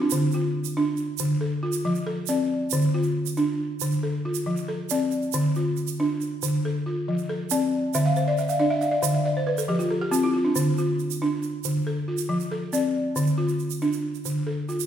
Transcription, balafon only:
Already playing: C4
0.02 D4
0.12 D3
0.34 F4
0.77 D4
1.20 D3
1.41 A4
1.63 F4
1.85 F3
2.07 A4
2.29 C4 D5
2.73 D3
2.94 F4
3.37 D4
3.82 D3
4.03 A4
4.25 F4
4.46 F3
4.68 A4
4.91 C4 D5
5.34 D3
5.56 F4
6.00 D4
6.43 D3
6.65 A4
6.86 F4
7.08 F3
7.29 A4
7.51 C4 D5
7.94 D3 E5
8.06 F5
8.17 C5
8.28 D5
8.39 E5
8.49 F5
8.59 D4 D5
8.70 E5
8.81 F5
8.91 D5
9.02 D3 F5
9.14 E5
9.25 D5
9.37 C5
9.47 B4
9.58 A4
9.68 F3 G4
9.79 F4
9.90 A4
10.02 G4
10.11 C4 F4
10.23 E4
10.33 F4
10.45 D4
10.56 D3
10.78 F4
11.22 D4
11.65 D3
11.87 A4
12.08 F4
12.29 F3
12.52 A4
12.73 C4 D5
13.16 D3
13.38 F4
13.82 D4
14.25 D3
14.47 A4
14.69 F4

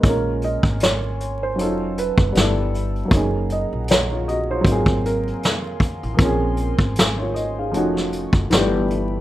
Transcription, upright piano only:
Already playing: G#3
0.01 A#3 C#4
0.06 F4 A#4
1.55 F#3 C#4 D#4
1.60 F4 A4
2.32 G3 B3 D4 E4
2.38 A4
3.05 F#3 A#3
3.11 C#4 D#4
3.16 G#4
4.12 F4 C#5
4.28 F#4 D#5
4.51 F4 C#5
4.61 F#3 A#3
4.67 C4 F4
4.72 G#4
6.14 F3 A#3
6.19 C4 C#4
6.25 G#4
7.18 F4 C#5
7.34 D#5
7.59 G#4 F5
7.71 F3 A3 C#4
7.75 D#4 F#4
8.50 E3 A3 B3
8.54 D4 G4

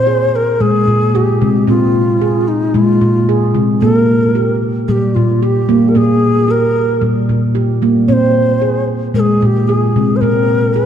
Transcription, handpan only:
Already playing: A#2
0.07 G#4
0.60 A#2 G#3
0.88 A#2
1.15 G#4
1.41 C3 G#3
1.67 A#2 C4
2.21 G#4
2.74 A#2 G#3
3.01 A#2
3.29 G#4
3.55 C3 G#3
3.82 A#2 A#3
4.35 G4
4.88 A#2 G3
5.16 A#2
5.43 G4
5.69 G3 A#3
5.95 A#2 A#3
6.48 G4
7.01 A#2 G3
7.29 A#2
7.55 G4
7.82 G3 A#3
8.08 A#2 C4
8.62 G#4
9.14 A#2 G#3
9.42 A#2
9.69 G#4
9.96 C3 G#3
10.21 A#2 C4
10.76 G#4

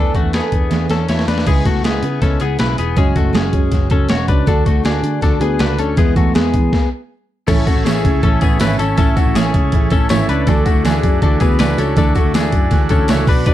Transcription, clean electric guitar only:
Already playing: D4 A4
0.15 A3 F#4
0.34 B3 G#4
0.91 C#4 A4
1.09 E4 C#5
1.28 D4 B4
1.47 B3 G#4
1.66 A3 F#4
1.85 B3 G#4
2.22 C#4 A4
2.41 B3 G#4
2.59 E4 B4
2.79 B3 G#4
2.98 C#4 G#4
3.16 A3 F#4
3.35 C#4 G#4
3.91 C#4 A4
4.10 F#4 C#5
4.28 D4 B4
4.48 D4 A4
4.66 A3 F#4
4.85 D4 G#4
5.23 D4 A4
5.41 B3 G#4
5.60 D4 B4
5.79 C#4 A4
5.98 B3 G#4
6.17 A3 F#4
6.35 B3 G#4
7.48 C#4 A4
7.67 A3 F#4
7.85 C#4 G#4
8.23 C#4 A4
8.42 B3 G#4
8.61 E4 B4
8.79 C#4 A4
8.98 C#4 A4
9.17 A3 F#4
9.36 C#4 G#4
9.92 C#4 A4
10.10 E4 C#5
10.29 D4 B4
10.48 D4 A4
10.66 A3 F#4
10.85 D4 G#4
11.22 D4 A4
11.41 B3 G#4
11.59 D4 B4
11.78 C#4 A4
11.98 D4 A4
12.16 A3 F#4
12.35 D4 G#4
12.91 C#4 A4
13.10 E4 C#5
13.28 D4 B4
13.47 D4 B4

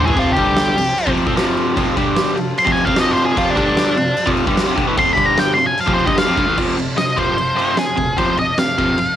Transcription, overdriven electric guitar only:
0.06 A2 E3
0.16 F2 C3 F3
0.37 G2 D3 G3
0.76 F2 C3
1.06 F2 C3 F3
1.26 F3 C4
1.35 F2 C3 F3
1.76 F2 C3 F3
1.97 G2 D3 G3
2.36 F2 C3
2.65 F2 C3 F3
2.85 F3 C4
2.95 F2 C3 F3
3.36 F2 C3 F3
3.56 G2 D3 G3
3.97 F2 C3
4.26 F2 C3 F3
4.47 G2 D3 G3
4.67 F2 C3
4.75 G2 D3
4.87 A2 E3
4.96 F2 C3 F3
5.16 G2 D3 G3
5.57 F2 C3
5.86 F2 C3 F3
6.05 G2 D3 G3
6.27 F2 C3
6.37 G2 D3
6.47 A2 E3
6.57 F2 C3 F3
6.77 F2 C3
6.96 F2 C3
7.17 F2 C3 F3
7.36 F2 C3
7.56 F2 C3 F3
7.76 F2 C3
7.96 F2 C3
8.17 F2 C3 F3
8.37 F2 C3
8.58 F2 C3
8.78 F2 C3 F3
8.99 F2 C3

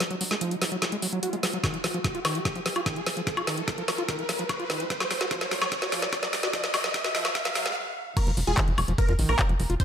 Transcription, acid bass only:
0.00 F#3
0.11 F#3
0.21 F#3
0.31 G#3
0.41 F3
0.51 F#3
0.62 F#3
0.72 F#3
0.82 F#3
0.92 G#3
1.02 F#3
1.13 F#3
1.23 F#4
1.33 G#3
1.43 F#3
1.53 F#3
1.64 D#3
1.74 F3
1.84 F3
1.94 F3
2.04 F3
2.15 F4
2.25 D#3
2.35 F3
2.45 F3
2.56 F3
2.66 F3
2.76 F4
2.86 D#3
2.96 F3
3.07 F3
3.17 F3
3.27 F3
3.37 F4
3.47 D#3
3.58 F3
3.68 F3
3.78 F3
3.88 F3
3.98 F4
4.09 D#3
4.19 F3
4.29 F3
4.39 F3
4.49 F3
4.60 F4
4.70 D#3
4.80 F3
4.90 F#3
5.00 F#3
5.11 F#3
5.21 F#4
5.31 F3
5.41 F#3
5.51 F#3
5.62 F#3
5.72 F#3
5.82 F#4
5.92 F3
6.02 F#3
6.13 F#3
6.23 F#3
6.33 F#3
6.43 F#4
6.53 F3
6.64 F#3
6.74 F#3
6.84 F#3
6.94 F#3
7.04 F#4
7.15 F3
7.25 F#3
7.35 F#3
7.45 F#3
7.56 F#3
7.66 G#3
8.17 F3
8.27 F3
8.37 F3
8.47 F4
8.58 D#3
8.68 F3
8.78 F3
8.88 F3
8.98 F3
9.09 F4
9.19 D#3
9.29 F3
9.39 F3
9.49 F3
9.60 F3
9.70 F4
9.80 D#3

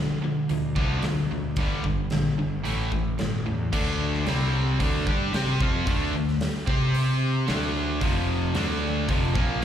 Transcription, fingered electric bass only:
Already playing: D3
0.50 D2
0.76 C2
1.05 D2
1.32 D2
1.57 G1
1.84 G1
2.14 A#1
2.40 G1
2.66 A1
2.92 A1
3.21 G1
3.48 E2
3.73 D2
4.27 C2
4.80 D2
5.07 G2
5.35 C3
5.61 F2
5.87 D2
6.14 D2
6.67 C3
7.49 D2
8.02 F1
8.56 D2
9.09 F1
9.35 A#1

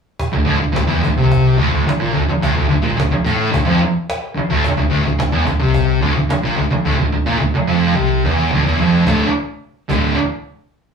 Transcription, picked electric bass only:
0.34 D1
0.47 D1
0.62 D1
0.75 D1
0.89 E1
1.04 D1
1.18 C2
1.59 D1
1.72 D1
1.88 muted picked electric bass stroke
2.02 A#1
2.15 D1
2.43 D1
2.57 D1
2.71 D1
2.84 A#1
2.99 D1
3.14 muted picked electric bass stroke
3.26 A1
3.54 D1
3.68 F1
4.37 muted picked electric bass stroke
4.50 D1
4.77 D1
4.91 D1
5.05 D1
5.19 D1
5.32 E1
5.47 D1
5.60 C2
6.02 D1
6.15 D1
6.29 muted picked electric bass stroke
6.43 A#1
6.56 D1
6.84 D1
6.99 D1
7.12 D1
7.26 A#1
7.40 D1
7.54 muted picked electric bass stroke
7.68 F1
7.96 C2
8.24 E1
8.52 D1
8.65 E1
8.79 F1
9.06 D1
9.90 D1

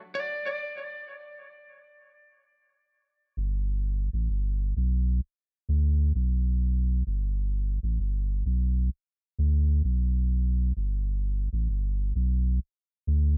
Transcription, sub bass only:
3.37 G1
4.13 A1
4.30 G1
4.77 B1
5.69 D2
6.15 B1
7.07 G1
7.83 A1
8.00 G1
8.46 B1
9.39 D2
9.84 B1
10.77 G1
11.53 A1
11.69 G1
12.15 B1
13.07 D2

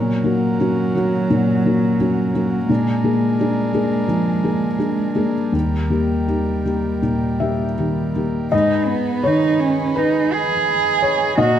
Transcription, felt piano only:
Already playing: A#2
0.24 A#3 F#4
0.60 C#4 F#4
0.95 A#3 F#4
1.30 A#2
1.66 A#3 F#4
2.00 C#4 F#4
2.35 A#3 F#4
2.69 A#2
3.04 A#3 G#4
3.40 D4 G#4
3.74 A#3 G#4
4.08 F3
4.44 A#3 G#4
4.78 D4 G#4
5.15 A#3 G#4
5.52 D#2
5.90 A#3 G4
6.28 D#4 G4
6.65 A#3 G4
7.02 A#2
7.40 A#3 G4 E5
7.78 D#3 G4
8.16 A#3 G4
8.52 G#2 D#5
9.23 D#3 C#5
9.96 B4
11.02 C#5
11.38 A#2 D#5

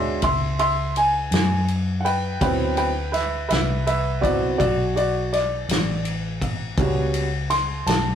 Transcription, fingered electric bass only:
Already playing: D2
0.23 C#2
1.31 F#2
2.41 D2
3.51 C2
4.60 B1
5.69 A1
6.78 C#2
7.86 B1

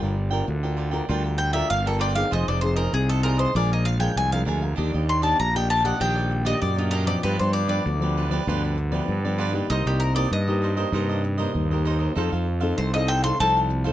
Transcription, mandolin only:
1.38 G5
1.53 E5
1.70 F5
1.87 A4
2.01 D5
2.15 F5
2.33 D#5
2.48 D5
2.61 C5
2.77 A#4
2.94 G#4
3.09 A4
3.23 A#4
3.39 C5
3.56 D5
3.73 D#5
3.85 F5
4.00 G5
4.17 G#5
4.32 F5
5.09 C6
5.23 A5
5.40 A#5
5.56 G5
5.70 A5
5.85 F#5
6.01 G5
6.46 D#5
6.62 D5
6.79 F4
6.91 A#4
7.07 D5
7.23 B4
7.39 C5
7.53 D5
7.69 D5
9.70 D#5
9.87 G4
10.00 A#4
10.16 D5
10.33 D#5
12.78 C5
12.94 D#5
13.08 G5
13.24 C6
13.40 A5

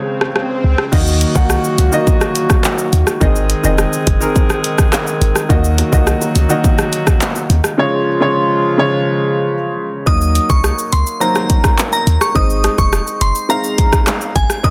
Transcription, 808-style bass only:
0.64 C#2
0.93 D#2
1.36 C2
1.78 C#2
2.93 D#2
3.21 G#1
3.64 F1
4.07 F#1
5.21 G#1
5.50 D#2
5.93 C2
6.36 C#2
7.50 D#2
10.07 D#2
10.50 C2
10.93 C#2
12.07 D#2
12.35 G#1
12.78 F1
13.21 F#1
14.36 G#1
14.64 D#2

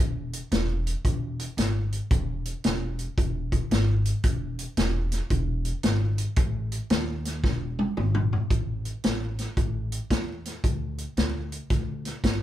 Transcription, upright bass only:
0.00 E1
0.52 E1
1.05 E1
1.57 G#1
2.11 E1
2.65 E1
3.18 E1
3.71 G#1
4.24 E1
4.77 E1
5.30 E1
5.84 G#1
6.37 A1
6.90 D#2
7.44 E1
7.97 G#1
8.50 A1
9.04 A1
9.57 A1
10.10 E2
10.64 D2
11.17 D2
11.71 D2
12.24 G#1

